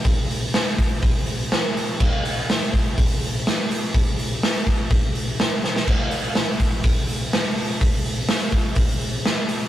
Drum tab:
CC |----------------|x---------------|----------------|x---------------|
HH |o-o-o-o-o-o-o-o-|--o-o-o-o-o-o-o-|o-o-o-o-o-o-o---|--o-o-o-o-o-o-o-|
SD |----o-------o---|----o-------o---|----o-------o-oo|----o-------o---|
BD |o-----o-o-------|o-----o-o-------|o-----o-o-------|o-----o-o-------|

CC |----------------|
HH |o-o-o-o-o-o-o-o-|
SD |----o-------o---|
BD |o-----o-o-------|